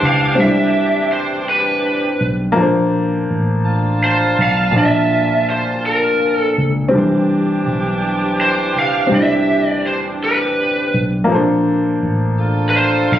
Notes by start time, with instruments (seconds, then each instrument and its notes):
Already playing: grand piano E3 G3 C4 D4 C5, horn section E3 D4 G4
0.03 fingered electric bass C#2, lead electric guitar F5
0.35 fingered electric bass C2, grand piano G3 C4
0.40 grand piano D4 E4, lead electric guitar E5
0.45 grand piano D5
1.12 lead electric guitar C5
1.49 lead electric guitar B4
2.21 fingered electric bass B1
2.52 grand piano F3 A#3
2.57 fingered electric bass A#1, grand piano D4 A4
2.62 grand piano C5
3.31 fingered electric bass A1
3.65 horn section D4 F4 A5
4.04 lead electric guitar C5
4.39 fingered electric bass B1, lead electric guitar F5
4.71 grand piano A#2 F3
4.76 fingered electric bass A#1, grand piano D4 A5, lead electric guitar E5
4.81 grand piano D5
5.50 lead electric guitar C5
5.86 lead electric guitar A#4
6.39 lead electric guitar A4
6.58 fingered electric bass C#2
6.88 grand piano G3 C4, horn section D4
6.93 fingered electric bass C2, horn section E3 G4, grand piano E3 D4
6.98 grand piano C5
7.67 fingered electric bass B1
8.41 lead electric guitar C5
8.75 fingered electric bass C#2, lead electric guitar F5
9.07 grand piano G3 C4
9.12 fingered electric bass C2, grand piano D4 E4, lead electric guitar E5
9.16 grand piano D5
9.69 lead electric guitar D5
9.87 lead electric guitar C5
10.24 lead electric guitar B4
10.94 fingered electric bass B1
11.24 grand piano F3 A#3
11.30 fingered electric bass A#1, grand piano C4 A4
11.35 grand piano D4 C5
12.03 fingered electric bass A1
12.37 horn section D4 F4 A4
12.69 lead electric guitar B4
12.77 lead electric guitar C5
13.12 fingered electric bass B1, lead electric guitar F5